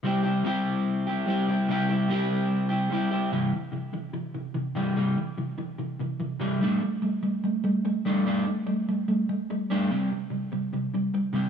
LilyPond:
\new Staff \with { instrumentName = "Distorted electric guitar" } { \clef bass \time 4/4 \key c \major \tempo 4 = 146 <c g c' e' g'>8 <c' e' g'>8 <c g c' e' g'>4. <c' e' g'>8 <g c' e' g'>8 <c' e' g'>8 | <c g c' e' g'>8 <c' e' g'>8 <c g c' e' g'>4. <c' e' g'>8 <g c' e' g'>8 <c' e' g'>8 | <c e g>8 <c e>8 <c e>8 <c e>8 <c e>8 <c e>8 <c e>8 <c e g>8 | <c e g>8 <c e>8 <c e>8 <c e>8 <c e>8 <c e>8 <c e>8 <c e g>8 |
<g a d'>8 <g a>8 <g a>8 <g a>8 <g a>8 <g a>8 <g a>8 <g a d'>8 | <g a d'>8 <g a>8 <g a>8 <g a>8 <g a>8 <g a>8 <g a>8 <g a d'>8 | <c g c'>8 <c g>8 <c g>8 <c g>8 <c g>8 <c g>8 <c g>8 <c g c'>8 | }